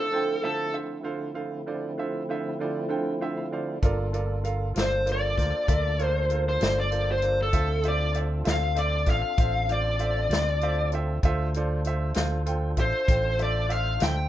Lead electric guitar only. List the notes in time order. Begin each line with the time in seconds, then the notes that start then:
0.00 A4
0.45 A4
4.80 C5
5.12 D5
6.04 C5
6.49 C5
6.80 D5
7.12 C5
7.42 A4
7.88 D5
8.50 F5
8.79 D5
9.10 F5
9.72 D5
12.81 C5
13.42 D5
13.72 F5
14.03 G5